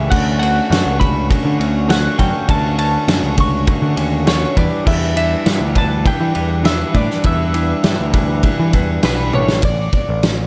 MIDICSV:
0, 0, Header, 1, 5, 480
1, 0, Start_track
1, 0, Tempo, 595829
1, 87, Time_signature, 4, 2, 24, 8
1, 8434, End_track
2, 0, Start_track
2, 0, Title_t, "Clean electric guitar"
2, 0, Program_c, 0, 27
2, 0, Note_on_c, 0, 76, 75
2, 85, Note_on_c, 0, 78, 91
2, 91, Note_off_c, 0, 76, 0
2, 308, Note_off_c, 0, 78, 0
2, 317, Note_on_c, 0, 78, 112
2, 800, Note_off_c, 0, 78, 0
2, 803, Note_on_c, 0, 83, 87
2, 1026, Note_off_c, 0, 83, 0
2, 1535, Note_on_c, 0, 78, 73
2, 1759, Note_off_c, 0, 78, 0
2, 1762, Note_on_c, 0, 79, 72
2, 2008, Note_off_c, 0, 79, 0
2, 2016, Note_on_c, 0, 81, 111
2, 2237, Note_off_c, 0, 81, 0
2, 2246, Note_on_c, 0, 81, 102
2, 2690, Note_off_c, 0, 81, 0
2, 2743, Note_on_c, 0, 85, 86
2, 2954, Note_off_c, 0, 85, 0
2, 3451, Note_on_c, 0, 73, 83
2, 3691, Note_off_c, 0, 73, 0
2, 3698, Note_on_c, 0, 74, 80
2, 3924, Note_off_c, 0, 74, 0
2, 3927, Note_on_c, 0, 76, 99
2, 4156, Note_off_c, 0, 76, 0
2, 4166, Note_on_c, 0, 76, 100
2, 4655, Note_off_c, 0, 76, 0
2, 4658, Note_on_c, 0, 81, 91
2, 4890, Note_off_c, 0, 81, 0
2, 4893, Note_on_c, 0, 79, 101
2, 5359, Note_off_c, 0, 79, 0
2, 5362, Note_on_c, 0, 76, 92
2, 5606, Note_off_c, 0, 76, 0
2, 5609, Note_on_c, 0, 74, 88
2, 5826, Note_off_c, 0, 74, 0
2, 5852, Note_on_c, 0, 76, 99
2, 7255, Note_off_c, 0, 76, 0
2, 7290, Note_on_c, 0, 71, 81
2, 7527, Note_off_c, 0, 71, 0
2, 7531, Note_on_c, 0, 73, 76
2, 7770, Note_off_c, 0, 73, 0
2, 7774, Note_on_c, 0, 74, 93
2, 8434, Note_off_c, 0, 74, 0
2, 8434, End_track
3, 0, Start_track
3, 0, Title_t, "Clean electric guitar"
3, 0, Program_c, 1, 27
3, 0, Note_on_c, 1, 61, 103
3, 0, Note_on_c, 1, 64, 101
3, 82, Note_off_c, 1, 64, 0
3, 94, Note_on_c, 1, 50, 90
3, 97, Note_on_c, 1, 57, 99
3, 99, Note_off_c, 1, 61, 0
3, 101, Note_on_c, 1, 66, 96
3, 102, Note_on_c, 1, 61, 118
3, 323, Note_off_c, 1, 50, 0
3, 326, Note_on_c, 1, 50, 93
3, 328, Note_off_c, 1, 57, 0
3, 331, Note_off_c, 1, 61, 0
3, 332, Note_on_c, 1, 57, 100
3, 335, Note_on_c, 1, 61, 96
3, 337, Note_off_c, 1, 66, 0
3, 340, Note_on_c, 1, 66, 105
3, 561, Note_off_c, 1, 50, 0
3, 564, Note_on_c, 1, 50, 99
3, 565, Note_off_c, 1, 57, 0
3, 568, Note_on_c, 1, 57, 98
3, 571, Note_off_c, 1, 61, 0
3, 573, Note_off_c, 1, 66, 0
3, 574, Note_on_c, 1, 61, 102
3, 576, Note_on_c, 1, 66, 111
3, 788, Note_off_c, 1, 50, 0
3, 795, Note_off_c, 1, 57, 0
3, 798, Note_on_c, 1, 50, 96
3, 800, Note_off_c, 1, 61, 0
3, 802, Note_off_c, 1, 66, 0
3, 804, Note_on_c, 1, 57, 96
3, 810, Note_on_c, 1, 61, 90
3, 812, Note_on_c, 1, 66, 105
3, 1028, Note_off_c, 1, 50, 0
3, 1033, Note_off_c, 1, 57, 0
3, 1036, Note_off_c, 1, 61, 0
3, 1037, Note_on_c, 1, 50, 84
3, 1039, Note_off_c, 1, 66, 0
3, 1043, Note_on_c, 1, 57, 82
3, 1046, Note_on_c, 1, 61, 97
3, 1048, Note_on_c, 1, 66, 103
3, 1265, Note_off_c, 1, 50, 0
3, 1269, Note_off_c, 1, 57, 0
3, 1274, Note_off_c, 1, 61, 0
3, 1275, Note_on_c, 1, 50, 75
3, 1276, Note_off_c, 1, 66, 0
3, 1278, Note_on_c, 1, 57, 78
3, 1284, Note_on_c, 1, 61, 86
3, 1285, Note_on_c, 1, 66, 88
3, 1504, Note_off_c, 1, 50, 0
3, 1510, Note_off_c, 1, 57, 0
3, 1514, Note_off_c, 1, 61, 0
3, 1514, Note_on_c, 1, 50, 104
3, 1517, Note_off_c, 1, 66, 0
3, 1519, Note_on_c, 1, 57, 104
3, 1524, Note_on_c, 1, 61, 104
3, 1527, Note_on_c, 1, 66, 112
3, 1747, Note_off_c, 1, 50, 0
3, 1751, Note_off_c, 1, 57, 0
3, 1753, Note_off_c, 1, 61, 0
3, 1757, Note_on_c, 1, 50, 102
3, 1760, Note_off_c, 1, 66, 0
3, 1760, Note_on_c, 1, 57, 86
3, 1763, Note_on_c, 1, 61, 109
3, 1769, Note_on_c, 1, 66, 98
3, 1985, Note_off_c, 1, 50, 0
3, 1988, Note_off_c, 1, 57, 0
3, 1995, Note_off_c, 1, 61, 0
3, 1995, Note_on_c, 1, 50, 106
3, 1997, Note_off_c, 1, 66, 0
3, 1998, Note_on_c, 1, 57, 111
3, 2004, Note_on_c, 1, 61, 112
3, 2006, Note_on_c, 1, 66, 113
3, 2226, Note_off_c, 1, 50, 0
3, 2232, Note_off_c, 1, 57, 0
3, 2235, Note_off_c, 1, 61, 0
3, 2236, Note_on_c, 1, 50, 96
3, 2239, Note_off_c, 1, 66, 0
3, 2241, Note_on_c, 1, 57, 88
3, 2244, Note_on_c, 1, 61, 94
3, 2249, Note_on_c, 1, 66, 93
3, 2467, Note_off_c, 1, 50, 0
3, 2473, Note_off_c, 1, 57, 0
3, 2475, Note_off_c, 1, 61, 0
3, 2477, Note_on_c, 1, 50, 107
3, 2481, Note_off_c, 1, 66, 0
3, 2483, Note_on_c, 1, 57, 90
3, 2485, Note_on_c, 1, 61, 107
3, 2491, Note_on_c, 1, 66, 102
3, 2704, Note_off_c, 1, 50, 0
3, 2711, Note_off_c, 1, 57, 0
3, 2713, Note_on_c, 1, 50, 99
3, 2714, Note_off_c, 1, 61, 0
3, 2717, Note_off_c, 1, 66, 0
3, 2721, Note_on_c, 1, 57, 88
3, 2723, Note_on_c, 1, 61, 109
3, 2727, Note_on_c, 1, 66, 102
3, 2945, Note_off_c, 1, 50, 0
3, 2951, Note_off_c, 1, 57, 0
3, 2952, Note_off_c, 1, 61, 0
3, 2954, Note_on_c, 1, 50, 86
3, 2957, Note_off_c, 1, 66, 0
3, 2960, Note_on_c, 1, 57, 95
3, 2962, Note_on_c, 1, 61, 81
3, 2967, Note_on_c, 1, 66, 93
3, 3181, Note_off_c, 1, 50, 0
3, 3184, Note_off_c, 1, 57, 0
3, 3191, Note_on_c, 1, 50, 89
3, 3192, Note_off_c, 1, 61, 0
3, 3192, Note_off_c, 1, 66, 0
3, 3194, Note_on_c, 1, 57, 82
3, 3201, Note_on_c, 1, 61, 89
3, 3201, Note_on_c, 1, 66, 89
3, 3419, Note_off_c, 1, 50, 0
3, 3425, Note_off_c, 1, 57, 0
3, 3429, Note_on_c, 1, 50, 93
3, 3431, Note_off_c, 1, 61, 0
3, 3431, Note_off_c, 1, 66, 0
3, 3434, Note_on_c, 1, 57, 109
3, 3440, Note_on_c, 1, 61, 110
3, 3441, Note_on_c, 1, 66, 123
3, 3659, Note_off_c, 1, 50, 0
3, 3661, Note_off_c, 1, 57, 0
3, 3664, Note_off_c, 1, 61, 0
3, 3665, Note_off_c, 1, 66, 0
3, 3671, Note_on_c, 1, 52, 117
3, 3677, Note_on_c, 1, 55, 117
3, 3678, Note_on_c, 1, 62, 122
3, 3683, Note_on_c, 1, 64, 107
3, 3684, Note_on_c, 1, 71, 127
3, 3905, Note_off_c, 1, 52, 0
3, 3908, Note_on_c, 1, 52, 91
3, 3910, Note_off_c, 1, 55, 0
3, 3913, Note_on_c, 1, 55, 114
3, 3914, Note_off_c, 1, 62, 0
3, 3917, Note_on_c, 1, 62, 104
3, 3922, Note_off_c, 1, 64, 0
3, 3923, Note_off_c, 1, 71, 0
3, 3925, Note_on_c, 1, 64, 127
3, 3926, Note_on_c, 1, 71, 113
3, 4147, Note_off_c, 1, 52, 0
3, 4150, Note_on_c, 1, 52, 93
3, 4152, Note_off_c, 1, 55, 0
3, 4155, Note_off_c, 1, 62, 0
3, 4155, Note_on_c, 1, 55, 89
3, 4159, Note_off_c, 1, 64, 0
3, 4159, Note_on_c, 1, 62, 98
3, 4161, Note_off_c, 1, 71, 0
3, 4162, Note_on_c, 1, 64, 101
3, 4164, Note_on_c, 1, 71, 96
3, 4389, Note_off_c, 1, 52, 0
3, 4392, Note_on_c, 1, 52, 101
3, 4394, Note_off_c, 1, 55, 0
3, 4397, Note_off_c, 1, 62, 0
3, 4397, Note_on_c, 1, 55, 113
3, 4400, Note_on_c, 1, 62, 102
3, 4401, Note_off_c, 1, 64, 0
3, 4404, Note_on_c, 1, 64, 113
3, 4407, Note_off_c, 1, 71, 0
3, 4410, Note_on_c, 1, 71, 113
3, 4628, Note_off_c, 1, 52, 0
3, 4631, Note_on_c, 1, 52, 82
3, 4633, Note_off_c, 1, 55, 0
3, 4635, Note_off_c, 1, 62, 0
3, 4636, Note_on_c, 1, 55, 96
3, 4638, Note_off_c, 1, 64, 0
3, 4639, Note_on_c, 1, 62, 99
3, 4641, Note_on_c, 1, 64, 90
3, 4643, Note_off_c, 1, 71, 0
3, 4646, Note_on_c, 1, 71, 100
3, 4866, Note_off_c, 1, 52, 0
3, 4869, Note_on_c, 1, 52, 84
3, 4873, Note_off_c, 1, 55, 0
3, 4874, Note_off_c, 1, 62, 0
3, 4876, Note_on_c, 1, 55, 85
3, 4877, Note_off_c, 1, 71, 0
3, 4878, Note_on_c, 1, 62, 94
3, 4879, Note_off_c, 1, 64, 0
3, 4882, Note_on_c, 1, 64, 86
3, 4886, Note_on_c, 1, 71, 86
3, 5103, Note_off_c, 1, 52, 0
3, 5106, Note_off_c, 1, 55, 0
3, 5106, Note_on_c, 1, 52, 75
3, 5110, Note_on_c, 1, 55, 80
3, 5112, Note_off_c, 1, 62, 0
3, 5113, Note_off_c, 1, 64, 0
3, 5113, Note_off_c, 1, 71, 0
3, 5115, Note_on_c, 1, 62, 86
3, 5116, Note_on_c, 1, 64, 85
3, 5123, Note_on_c, 1, 71, 92
3, 5341, Note_off_c, 1, 52, 0
3, 5344, Note_off_c, 1, 55, 0
3, 5344, Note_on_c, 1, 52, 114
3, 5347, Note_off_c, 1, 71, 0
3, 5347, Note_on_c, 1, 55, 104
3, 5348, Note_off_c, 1, 62, 0
3, 5351, Note_on_c, 1, 62, 99
3, 5352, Note_off_c, 1, 64, 0
3, 5355, Note_on_c, 1, 64, 102
3, 5357, Note_on_c, 1, 71, 113
3, 5581, Note_off_c, 1, 52, 0
3, 5584, Note_on_c, 1, 52, 90
3, 5588, Note_off_c, 1, 55, 0
3, 5589, Note_off_c, 1, 62, 0
3, 5591, Note_on_c, 1, 55, 92
3, 5592, Note_off_c, 1, 71, 0
3, 5592, Note_on_c, 1, 62, 101
3, 5595, Note_off_c, 1, 64, 0
3, 5598, Note_on_c, 1, 64, 112
3, 5601, Note_on_c, 1, 71, 114
3, 5820, Note_off_c, 1, 52, 0
3, 5823, Note_off_c, 1, 55, 0
3, 5827, Note_off_c, 1, 62, 0
3, 5829, Note_on_c, 1, 52, 102
3, 5831, Note_off_c, 1, 64, 0
3, 5832, Note_on_c, 1, 55, 100
3, 5835, Note_off_c, 1, 71, 0
3, 5837, Note_on_c, 1, 62, 106
3, 5841, Note_on_c, 1, 64, 103
3, 5844, Note_on_c, 1, 71, 117
3, 6058, Note_off_c, 1, 52, 0
3, 6062, Note_off_c, 1, 55, 0
3, 6066, Note_off_c, 1, 62, 0
3, 6067, Note_on_c, 1, 52, 88
3, 6070, Note_off_c, 1, 64, 0
3, 6072, Note_on_c, 1, 55, 95
3, 6073, Note_off_c, 1, 71, 0
3, 6075, Note_on_c, 1, 62, 102
3, 6080, Note_on_c, 1, 64, 113
3, 6083, Note_on_c, 1, 71, 99
3, 6300, Note_off_c, 1, 52, 0
3, 6307, Note_off_c, 1, 55, 0
3, 6310, Note_on_c, 1, 52, 99
3, 6311, Note_off_c, 1, 62, 0
3, 6313, Note_off_c, 1, 64, 0
3, 6316, Note_off_c, 1, 71, 0
3, 6316, Note_on_c, 1, 55, 98
3, 6321, Note_on_c, 1, 62, 99
3, 6323, Note_on_c, 1, 64, 114
3, 6325, Note_on_c, 1, 71, 111
3, 6539, Note_off_c, 1, 52, 0
3, 6544, Note_off_c, 1, 55, 0
3, 6546, Note_off_c, 1, 62, 0
3, 6548, Note_on_c, 1, 52, 96
3, 6552, Note_off_c, 1, 64, 0
3, 6554, Note_off_c, 1, 71, 0
3, 6554, Note_on_c, 1, 55, 92
3, 6556, Note_on_c, 1, 62, 97
3, 6561, Note_on_c, 1, 64, 106
3, 6564, Note_on_c, 1, 71, 94
3, 6785, Note_off_c, 1, 52, 0
3, 6789, Note_off_c, 1, 55, 0
3, 6791, Note_off_c, 1, 62, 0
3, 6794, Note_on_c, 1, 52, 79
3, 6797, Note_off_c, 1, 64, 0
3, 6798, Note_on_c, 1, 55, 83
3, 6799, Note_off_c, 1, 71, 0
3, 6801, Note_on_c, 1, 62, 84
3, 6806, Note_on_c, 1, 64, 86
3, 6808, Note_on_c, 1, 71, 96
3, 7021, Note_off_c, 1, 52, 0
3, 7027, Note_off_c, 1, 55, 0
3, 7031, Note_off_c, 1, 62, 0
3, 7031, Note_on_c, 1, 52, 80
3, 7035, Note_off_c, 1, 64, 0
3, 7036, Note_off_c, 1, 71, 0
3, 7036, Note_on_c, 1, 55, 74
3, 7041, Note_on_c, 1, 62, 74
3, 7045, Note_on_c, 1, 64, 88
3, 7046, Note_on_c, 1, 71, 90
3, 7263, Note_off_c, 1, 52, 0
3, 7270, Note_off_c, 1, 55, 0
3, 7272, Note_on_c, 1, 52, 87
3, 7273, Note_off_c, 1, 62, 0
3, 7274, Note_off_c, 1, 64, 0
3, 7278, Note_off_c, 1, 71, 0
3, 7280, Note_on_c, 1, 55, 111
3, 7283, Note_on_c, 1, 62, 102
3, 7283, Note_on_c, 1, 64, 100
3, 7288, Note_on_c, 1, 71, 112
3, 7501, Note_off_c, 1, 52, 0
3, 7505, Note_off_c, 1, 55, 0
3, 7509, Note_off_c, 1, 62, 0
3, 7510, Note_on_c, 1, 52, 97
3, 7512, Note_off_c, 1, 64, 0
3, 7515, Note_on_c, 1, 55, 109
3, 7517, Note_off_c, 1, 71, 0
3, 7519, Note_on_c, 1, 62, 107
3, 7521, Note_on_c, 1, 64, 113
3, 7527, Note_on_c, 1, 71, 107
3, 7742, Note_off_c, 1, 52, 0
3, 7744, Note_off_c, 1, 55, 0
3, 7746, Note_off_c, 1, 62, 0
3, 7747, Note_off_c, 1, 64, 0
3, 7750, Note_off_c, 1, 71, 0
3, 8434, End_track
4, 0, Start_track
4, 0, Title_t, "Picked electric bass"
4, 0, Program_c, 2, 34
4, 95, Note_on_c, 2, 38, 91
4, 475, Note_off_c, 2, 38, 0
4, 567, Note_on_c, 2, 42, 95
4, 662, Note_off_c, 2, 42, 0
4, 689, Note_on_c, 2, 37, 80
4, 1070, Note_off_c, 2, 37, 0
4, 1167, Note_on_c, 2, 50, 84
4, 1261, Note_off_c, 2, 50, 0
4, 1287, Note_on_c, 2, 38, 73
4, 1669, Note_off_c, 2, 38, 0
4, 1769, Note_on_c, 2, 42, 91
4, 1861, Note_off_c, 2, 42, 0
4, 2004, Note_on_c, 2, 38, 87
4, 2386, Note_off_c, 2, 38, 0
4, 2480, Note_on_c, 2, 42, 97
4, 2576, Note_off_c, 2, 42, 0
4, 2599, Note_on_c, 2, 37, 74
4, 2982, Note_off_c, 2, 37, 0
4, 3078, Note_on_c, 2, 50, 88
4, 3174, Note_off_c, 2, 50, 0
4, 3197, Note_on_c, 2, 39, 81
4, 3581, Note_off_c, 2, 39, 0
4, 3680, Note_on_c, 2, 40, 96
4, 3775, Note_off_c, 2, 40, 0
4, 3920, Note_on_c, 2, 40, 93
4, 4303, Note_off_c, 2, 40, 0
4, 4398, Note_on_c, 2, 43, 99
4, 4493, Note_off_c, 2, 43, 0
4, 4515, Note_on_c, 2, 38, 84
4, 4900, Note_off_c, 2, 38, 0
4, 4998, Note_on_c, 2, 52, 92
4, 5093, Note_off_c, 2, 52, 0
4, 5121, Note_on_c, 2, 40, 78
4, 5503, Note_off_c, 2, 40, 0
4, 5595, Note_on_c, 2, 45, 104
4, 5692, Note_off_c, 2, 45, 0
4, 5836, Note_on_c, 2, 40, 89
4, 6221, Note_off_c, 2, 40, 0
4, 6318, Note_on_c, 2, 43, 104
4, 6413, Note_off_c, 2, 43, 0
4, 6443, Note_on_c, 2, 38, 73
4, 6826, Note_off_c, 2, 38, 0
4, 6924, Note_on_c, 2, 52, 95
4, 7018, Note_off_c, 2, 52, 0
4, 7038, Note_on_c, 2, 40, 77
4, 7231, Note_off_c, 2, 40, 0
4, 7276, Note_on_c, 2, 35, 85
4, 7494, Note_off_c, 2, 35, 0
4, 7521, Note_on_c, 2, 33, 79
4, 7737, Note_off_c, 2, 33, 0
4, 7759, Note_on_c, 2, 33, 91
4, 7953, Note_off_c, 2, 33, 0
4, 8127, Note_on_c, 2, 33, 91
4, 8415, Note_off_c, 2, 33, 0
4, 8434, End_track
5, 0, Start_track
5, 0, Title_t, "Drums"
5, 94, Note_on_c, 9, 36, 114
5, 97, Note_on_c, 9, 49, 101
5, 174, Note_off_c, 9, 36, 0
5, 178, Note_off_c, 9, 49, 0
5, 343, Note_on_c, 9, 51, 83
5, 423, Note_off_c, 9, 51, 0
5, 581, Note_on_c, 9, 51, 106
5, 586, Note_on_c, 9, 38, 102
5, 662, Note_off_c, 9, 51, 0
5, 667, Note_off_c, 9, 38, 0
5, 813, Note_on_c, 9, 36, 102
5, 822, Note_on_c, 9, 51, 78
5, 894, Note_off_c, 9, 36, 0
5, 903, Note_off_c, 9, 51, 0
5, 1052, Note_on_c, 9, 36, 110
5, 1060, Note_on_c, 9, 51, 101
5, 1132, Note_off_c, 9, 36, 0
5, 1141, Note_off_c, 9, 51, 0
5, 1293, Note_on_c, 9, 51, 69
5, 1374, Note_off_c, 9, 51, 0
5, 1529, Note_on_c, 9, 51, 108
5, 1534, Note_on_c, 9, 38, 127
5, 1610, Note_off_c, 9, 51, 0
5, 1615, Note_off_c, 9, 38, 0
5, 1766, Note_on_c, 9, 36, 73
5, 1766, Note_on_c, 9, 51, 76
5, 1846, Note_off_c, 9, 36, 0
5, 1847, Note_off_c, 9, 51, 0
5, 2002, Note_on_c, 9, 51, 114
5, 2004, Note_on_c, 9, 36, 109
5, 2083, Note_off_c, 9, 51, 0
5, 2085, Note_off_c, 9, 36, 0
5, 2243, Note_on_c, 9, 51, 90
5, 2324, Note_off_c, 9, 51, 0
5, 2482, Note_on_c, 9, 51, 113
5, 2487, Note_on_c, 9, 38, 102
5, 2563, Note_off_c, 9, 51, 0
5, 2568, Note_off_c, 9, 38, 0
5, 2719, Note_on_c, 9, 51, 92
5, 2722, Note_on_c, 9, 36, 97
5, 2799, Note_off_c, 9, 51, 0
5, 2803, Note_off_c, 9, 36, 0
5, 2957, Note_on_c, 9, 51, 104
5, 2962, Note_on_c, 9, 36, 118
5, 3038, Note_off_c, 9, 51, 0
5, 3042, Note_off_c, 9, 36, 0
5, 3199, Note_on_c, 9, 51, 76
5, 3280, Note_off_c, 9, 51, 0
5, 3439, Note_on_c, 9, 51, 101
5, 3444, Note_on_c, 9, 38, 116
5, 3519, Note_off_c, 9, 51, 0
5, 3524, Note_off_c, 9, 38, 0
5, 3681, Note_on_c, 9, 36, 86
5, 3682, Note_on_c, 9, 51, 79
5, 3762, Note_off_c, 9, 36, 0
5, 3762, Note_off_c, 9, 51, 0
5, 3922, Note_on_c, 9, 36, 125
5, 3922, Note_on_c, 9, 49, 112
5, 4002, Note_off_c, 9, 49, 0
5, 4003, Note_off_c, 9, 36, 0
5, 4162, Note_on_c, 9, 51, 88
5, 4243, Note_off_c, 9, 51, 0
5, 4398, Note_on_c, 9, 51, 100
5, 4403, Note_on_c, 9, 38, 105
5, 4479, Note_off_c, 9, 51, 0
5, 4483, Note_off_c, 9, 38, 0
5, 4634, Note_on_c, 9, 51, 77
5, 4639, Note_on_c, 9, 36, 92
5, 4714, Note_off_c, 9, 51, 0
5, 4720, Note_off_c, 9, 36, 0
5, 4878, Note_on_c, 9, 36, 116
5, 4878, Note_on_c, 9, 51, 98
5, 4959, Note_off_c, 9, 36, 0
5, 4959, Note_off_c, 9, 51, 0
5, 5113, Note_on_c, 9, 51, 66
5, 5194, Note_off_c, 9, 51, 0
5, 5356, Note_on_c, 9, 51, 104
5, 5361, Note_on_c, 9, 38, 114
5, 5437, Note_off_c, 9, 51, 0
5, 5441, Note_off_c, 9, 38, 0
5, 5594, Note_on_c, 9, 51, 67
5, 5596, Note_on_c, 9, 36, 81
5, 5675, Note_off_c, 9, 51, 0
5, 5677, Note_off_c, 9, 36, 0
5, 5722, Note_on_c, 9, 38, 30
5, 5802, Note_off_c, 9, 38, 0
5, 5830, Note_on_c, 9, 51, 102
5, 5837, Note_on_c, 9, 36, 113
5, 5910, Note_off_c, 9, 51, 0
5, 5917, Note_off_c, 9, 36, 0
5, 6074, Note_on_c, 9, 51, 85
5, 6155, Note_off_c, 9, 51, 0
5, 6313, Note_on_c, 9, 51, 94
5, 6317, Note_on_c, 9, 38, 114
5, 6393, Note_off_c, 9, 51, 0
5, 6398, Note_off_c, 9, 38, 0
5, 6553, Note_on_c, 9, 51, 92
5, 6556, Note_on_c, 9, 36, 102
5, 6633, Note_off_c, 9, 51, 0
5, 6636, Note_off_c, 9, 36, 0
5, 6790, Note_on_c, 9, 51, 106
5, 6796, Note_on_c, 9, 36, 113
5, 6870, Note_off_c, 9, 51, 0
5, 6876, Note_off_c, 9, 36, 0
5, 7033, Note_on_c, 9, 51, 74
5, 7037, Note_on_c, 9, 36, 81
5, 7114, Note_off_c, 9, 51, 0
5, 7117, Note_off_c, 9, 36, 0
5, 7272, Note_on_c, 9, 51, 113
5, 7277, Note_on_c, 9, 38, 127
5, 7353, Note_off_c, 9, 51, 0
5, 7357, Note_off_c, 9, 38, 0
5, 7520, Note_on_c, 9, 48, 65
5, 7601, Note_off_c, 9, 48, 0
5, 7641, Note_on_c, 9, 38, 98
5, 7722, Note_off_c, 9, 38, 0
5, 7750, Note_on_c, 9, 51, 91
5, 7758, Note_on_c, 9, 36, 113
5, 7831, Note_off_c, 9, 51, 0
5, 7839, Note_off_c, 9, 36, 0
5, 7996, Note_on_c, 9, 51, 71
5, 7999, Note_on_c, 9, 36, 83
5, 8076, Note_off_c, 9, 51, 0
5, 8080, Note_off_c, 9, 36, 0
5, 8241, Note_on_c, 9, 51, 86
5, 8246, Note_on_c, 9, 38, 102
5, 8321, Note_off_c, 9, 51, 0
5, 8326, Note_off_c, 9, 38, 0
5, 8434, End_track
0, 0, End_of_file